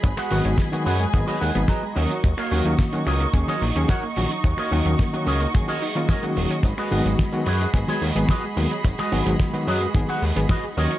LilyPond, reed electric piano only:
\new Staff \with { instrumentName = "Reed electric piano" } { \clef bass \time 4/4 \key gis \minor \tempo 4 = 109 r8 <dis fis gis b fis'>8. <dis fis gis b fis'>16 r8 <dis fis gis b gis'>16 r8 <dis fis gis b gis'>16 r8 <dis fis ais cis' fis'>16 r16 | r8 <dis fis ais cis' fis'>8. <dis fis ais cis' fis'>16 r8 <dis fis ais cis' gis'>16 r8 <dis fis ais cis' gis'>16 r8 <dis fis ais cis' fis'>16 r16 | r8 <dis fis ais cis' fis'>8. <dis fis ais cis' fis'>16 r8 <dis fis ais cis' gis'>16 r8 <dis fis ais cis' eis'>16 r16 <dis fis ais cis' fis'>8. | r8 <dis fis gis b fis'>8. <dis fis gis b fis'>16 r8 <dis fis gis b gis'>16 r8 <dis fis gis b gis'>16 r8 <dis fis gis b fis'>16 r16 |
r8 <dis fis gis b fis'>8. <dis fis gis b fis'>16 r8 <dis fis gis b gis'>16 r8 <dis fis gis b gis'>16 r8 <dis fis ais cis' fis'>16 r16 | }